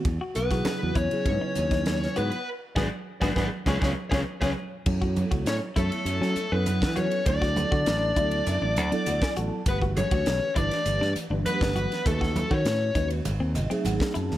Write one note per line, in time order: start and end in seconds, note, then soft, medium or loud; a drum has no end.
0.05 0.18 E2 medium
0.05 kick loud
0.05 ride medium
0.21 0.37 F#4 medium
0.35 0.60 B1 medium
0.35 0.92 B3 medium
0.35 0.96 B4 medium
0.35 hi-hat pedal medium
0.35 ride medium
0.35 muted conga soft
0.50 0.78 C#3 medium
0.50 0.78 F#3 medium
0.50 0.78 B3 medium
0.50 0.78 E4 medium
0.50 0.67 F#4 medium
0.50 0.78 G#4 medium
0.50 kick medium
0.50 snare soft
0.50 ride medium
0.65 muted fingered electric bass stroke soft
0.65 snare medium
0.65 ride medium
0.65 high conga medium
0.81 0.94 E2 medium
0.81 1.08 C#3 medium
0.81 1.08 F#3 medium
0.81 1.09 B3 medium
0.81 1.09 E4 medium
0.81 1.09 F#4 medium
0.95 1.08 E2 medium
0.95 2.12 C#4 medium
0.95 1.12 E4 medium
0.95 2.20 C#5 medium
0.95 kick medium
0.95 hi-hat pedal medium
0.95 ride medium
1.11 1.24 C#3 medium
1.11 1.24 F#3 medium
1.11 1.24 B3 medium
1.11 1.25 E4 medium
1.11 1.25 G#4 medium
1.11 muted fingered electric bass stroke soft
1.11 ride medium
1.25 1.38 G#2 medium
1.25 2.35 C#3 medium
1.25 2.35 F#3 medium
1.25 2.35 B3 medium
1.25 2.35 E4 medium
1.25 2.36 B4 medium
1.25 kick medium
1.25 ride medium
1.41 1.58 D#4 medium
1.41 muted fingered electric bass stroke soft
1.55 2.06 D#2 medium
1.55 hi-hat pedal medium
1.55 ride medium
1.55 high conga medium
1.71 1.88 D#4 medium
1.71 kick medium
1.71 snare soft
1.71 ride soft
1.86 snare medium
1.86 ride medium
1.86 high conga medium
2.03 snare soft
2.16 2.30 G#2 medium
2.16 2.45 B3 medium
2.16 2.32 F#4 medium
2.16 2.48 B4 medium
2.16 hi-hat pedal medium
2.16 ride medium
2.31 ride soft
2.76 2.88 G#1 medium
2.76 2.86 G#3 medium
2.76 2.84 B3 medium
2.76 2.86 B3 medium
2.76 2.86 D4 medium
2.76 2.86 F#4 medium
2.76 2.86 G#4 medium
2.76 2.86 B4 medium
2.76 2.86 D5 medium
2.76 kick medium
2.76 snare medium
2.76 high conga medium
3.21 3.32 G#1 medium
3.21 3.31 G#3 medium
3.21 3.31 B3 medium
3.21 3.29 B3 medium
3.21 3.32 D4 medium
3.21 3.31 D4 medium
3.21 3.31 F#4 medium
3.21 3.31 G#4 medium
3.21 3.31 B4 medium
3.21 3.31 D5 medium
3.21 kick medium
3.21 snare medium
3.21 high conga medium
3.36 3.48 G#1 medium
3.36 3.43 B3 medium
3.36 3.47 D4 medium
3.36 3.47 F#4 medium
3.36 3.46 G#4 medium
3.36 3.47 G#4 medium
3.36 3.46 B4 medium
3.36 3.46 D5 medium
3.36 kick medium
3.36 snare medium
3.36 high conga medium
3.66 3.78 C#2 medium
3.66 3.76 G#3 medium
3.66 3.76 B3 medium
3.66 3.76 C#4 medium
3.66 3.77 C#4 medium
3.66 3.75 C#4 medium
3.66 3.77 F4 medium
3.66 3.76 G#4 medium
3.66 3.77 G#4 medium
3.66 3.76 B4 medium
3.66 3.76 C#5 medium
3.66 kick medium
3.66 snare medium
3.66 high conga medium
3.80 3.93 C#2 medium
3.80 3.91 G#3 medium
3.80 3.91 B3 medium
3.80 3.91 C#4 medium
3.80 3.90 C#4 medium
3.80 3.91 F4 medium
3.80 3.91 G#4 medium
3.80 3.91 B4 medium
3.80 3.90 C#5 medium
3.80 kick medium
3.80 snare medium
3.80 high conga medium
4.10 4.23 C#2 medium
4.10 4.21 G#3 medium
4.10 4.21 B3 medium
4.10 4.21 C#4 medium
4.10 4.20 C#4 medium
4.10 4.21 F4 medium
4.10 4.20 G#4 medium
4.10 4.21 G#4 medium
4.10 4.20 B4 medium
4.10 4.20 C#5 medium
4.10 kick medium
4.10 snare medium
4.10 high conga medium
4.41 4.53 C#2 medium
4.41 4.51 G#3 medium
4.41 4.51 B3 medium
4.41 4.51 C#4 medium
4.41 4.50 C#4 medium
4.41 4.51 F4 medium
4.41 4.51 G#4 medium
4.41 4.51 B4 medium
4.41 4.51 C#5 medium
4.41 kick medium
4.41 snare medium
4.41 high conga medium
4.86 5.23 F#2 medium
4.86 5.68 F#3 medium
4.86 5.68 B3 medium
4.86 5.68 E4 medium
4.86 5.68 A4 medium
4.86 5.69 C#5 medium
4.86 kick loud
4.86 crash medium
5.01 5.18 F#4 medium
5.01 kick medium
5.16 hi-hat pedal medium
5.16 ride soft
5.16 high conga medium
5.31 5.44 C#2 medium
5.31 5.48 F#4 medium
5.31 kick medium
5.31 ride medium
5.46 5.59 A2 medium
5.46 5.62 C#4 medium
5.46 5.55 C#5 medium
5.46 snare medium
5.46 hi-hat pedal medium
5.46 ride medium
5.46 muted conga soft
5.76 5.89 F#2 medium
5.76 6.45 F#3 medium
5.76 6.49 A3 medium
5.76 6.45 B3 medium
5.76 5.92 E4 medium
5.76 6.45 E4 medium
5.76 6.55 A4 medium
5.76 6.45 A4 medium
5.76 6.45 C#5 medium
5.76 kick medium
5.76 hi-hat pedal medium
5.76 ride medium
5.92 ride medium
6.05 6.18 F#2 medium
6.05 hi-hat pedal medium
6.05 ride medium
6.21 6.33 F#3 medium
6.21 6.38 C#4 medium
6.21 snare soft
6.36 muted fingered electric bass stroke soft
6.36 hi-hat pedal medium
6.36 ride medium
6.36 muted conga soft
6.52 6.83 F#2 medium
6.52 7.20 F#3 medium
6.52 7.20 B3 medium
6.52 6.95 B3 medium
6.52 6.68 C#4 medium
6.52 7.20 E4 medium
6.52 7.21 A4 medium
6.52 6.97 B4 medium
6.52 7.21 B4 medium
6.66 hi-hat pedal medium
6.66 ride medium
6.66 high conga medium
6.82 7.06 E3 medium
6.82 kick medium
6.82 snare loud
6.96 7.26 C#4 medium
6.96 7.12 F#4 medium
6.96 7.25 C#5 medium
6.96 hi-hat pedal medium
6.96 ride medium
6.96 high conga medium
7.11 ride medium
7.26 7.63 D2 loud
7.26 8.09 F#3 medium
7.26 8.09 B3 medium
7.26 9.33 D4 medium
7.26 8.09 E4 medium
7.26 8.09 A4 medium
7.26 9.33 D5 medium
7.26 8.10 D5 medium
7.26 kick medium
7.26 hi-hat pedal medium
7.26 ride medium
7.42 7.58 F#4 medium
7.42 kick medium
7.42 snare soft
7.56 hi-hat pedal medium
7.56 ride medium
7.56 high conga medium
7.71 7.84 D3 medium
7.71 7.88 F#4 medium
7.71 kick medium
7.86 8.11 A1 medium
7.86 snare loud
7.86 hi-hat pedal medium
7.86 ride medium
8.16 8.41 D2 medium
8.16 8.85 F#3 medium
8.16 8.85 B3 medium
8.16 8.33 E4 medium
8.16 8.85 E4 medium
8.16 8.85 A4 medium
8.16 8.85 D5 medium
8.16 kick medium
8.16 hi-hat pedal medium
8.16 ride medium
8.31 ride medium
8.47 8.59 F#2 medium
8.47 8.75 E5 medium
8.47 hi-hat pedal medium
8.47 ride medium
8.47 muted conga soft
8.47 low conga medium
8.62 8.77 A1 medium
8.62 8.78 D4 medium
8.76 8.90 D2 medium
8.76 9.05 F#5 medium
8.76 hi-hat pedal medium
8.76 ride medium
8.76 muted conga soft
8.76 high conga medium
8.92 9.60 F#3 medium
8.92 9.60 B3 medium
8.92 9.08 D4 medium
8.92 9.60 E4 medium
8.92 9.60 A4 medium
8.92 9.60 D5 loud
8.92 muted fingered electric bass stroke soft
8.92 ride medium
9.06 9.20 D2 medium
9.06 9.21 F#5 medium
9.06 hi-hat pedal medium
9.06 ride medium
9.06 high conga medium
9.22 9.36 G#5 medium
9.22 kick medium
9.22 snare medium
9.36 9.49 A1 medium
9.36 9.53 F#4 medium
9.36 9.64 A5 medium
9.36 hi-hat pedal medium
9.36 ride medium
9.66 10.03 G1 medium
9.66 10.49 D3 medium
9.66 10.48 E3 medium
9.66 10.48 A3 medium
9.66 9.82 B3 medium
9.66 10.49 G4 medium
9.66 10.49 B4 medium
9.66 9.76 B4 medium
9.66 kick loud
9.66 hi-hat pedal medium
9.66 ride medium
9.82 9.98 F#4 medium
9.82 kick medium
9.97 10.53 C#4 medium
9.97 10.53 C#5 medium
9.97 hi-hat pedal medium
9.97 ride medium
9.97 high conga medium
10.11 10.24 D2 medium
10.11 10.28 F#4 medium
10.11 kick medium
10.11 ride medium
10.26 10.39 B1 medium
10.26 snare loud
10.26 hi-hat pedal medium
10.26 ride medium
10.55 10.69 G1 medium
10.55 11.24 E3 medium
10.55 11.24 A3 medium
10.55 11.24 D4 medium
10.55 11.13 D4 medium
10.55 10.72 E4 medium
10.55 11.24 G4 medium
10.55 11.25 B4 medium
10.55 11.12 D5 medium
10.55 kick medium
10.55 hi-hat pedal medium
10.55 ride medium
10.71 snare soft
10.71 ride medium
10.86 10.98 G1 medium
10.86 hi-hat pedal medium
10.86 ride medium
10.86 muted conga soft
11.01 11.13 G2 medium
11.01 11.17 D4 medium
11.01 snare soft
11.16 muted fingered electric bass stroke soft
11.16 hi-hat pedal medium
11.16 ride medium
11.16 muted conga soft
11.30 11.43 G1 medium
11.30 11.99 E3 medium
11.30 11.99 A3 medium
11.30 11.47 D4 medium
11.30 11.99 D4 medium
11.30 12.00 G4 medium
11.30 12.00 B4 medium
11.46 12.02 B3 medium
11.46 12.06 B4 medium
11.46 hi-hat pedal medium
11.46 ride medium
11.46 high conga medium
11.61 11.86 G1 medium
11.61 kick medium
11.61 snare loud
11.76 11.92 F#4 medium
11.76 hi-hat pedal medium
11.76 ride medium
11.76 high conga medium
11.92 snare soft
11.92 ride medium
12.06 12.43 D#2 loud
12.06 12.87 D#3 medium
12.06 12.87 A3 medium
12.06 12.49 A3 medium
12.06 12.88 C#4 medium
12.06 12.88 F#4 medium
12.06 12.53 A4 medium
12.06 12.88 B4 medium
12.06 kick loud
12.06 hi-hat pedal medium
12.06 ride medium
12.06 muted conga soft
12.21 12.37 F#4 medium
12.21 kick medium
12.21 snare soft
12.36 hi-hat pedal medium
12.36 ride medium
12.36 high conga medium
12.51 12.63 D#3 medium
12.51 13.08 C#4 medium
12.51 12.67 F#4 medium
12.51 13.07 C#5 medium
12.51 kick medium
12.65 12.90 A2 medium
12.65 snare medium
12.65 hi-hat pedal medium
12.65 ride medium
12.65 muted conga soft
12.95 13.19 D#2 medium
12.95 13.25 D#3 medium
12.95 13.26 G#3 medium
12.95 13.26 C#4 medium
12.95 13.11 D#4 medium
12.95 13.26 F#4 medium
12.95 13.26 B4 medium
12.95 kick medium
12.95 hi-hat pedal medium
12.95 ride medium
13.10 ride medium
13.25 13.38 G#1 medium
13.25 hi-hat pedal medium
13.25 ride medium
13.25 muted conga soft
13.25 low conga medium
13.40 13.58 D#2 medium
13.40 13.56 C4 medium
13.55 13.69 G#1 medium
13.55 13.70 D#5 medium
13.55 hi-hat pedal medium
13.55 ride medium
13.55 muted conga soft
13.55 low conga medium
13.70 14.38 F#3 medium
13.70 14.38 A3 medium
13.70 13.86 C4 medium
13.70 14.38 C4 medium
13.70 14.38 D#4 medium
13.70 14.38 G#4 loud
13.70 13.84 E5 medium
13.70 muted fingered electric bass stroke soft
13.70 ride medium
13.85 13.98 G#1 medium
13.85 14.13 F#5 medium
13.85 hi-hat pedal medium
13.85 ride medium
13.85 high conga medium
14.00 kick medium
14.00 snare loud
14.14 14.29 F#2 medium
14.14 14.31 E4 medium
14.14 14.38 A5 medium
14.14 hi-hat pedal medium
14.14 ride medium
14.31 14.38 D#2 medium
14.31 snare soft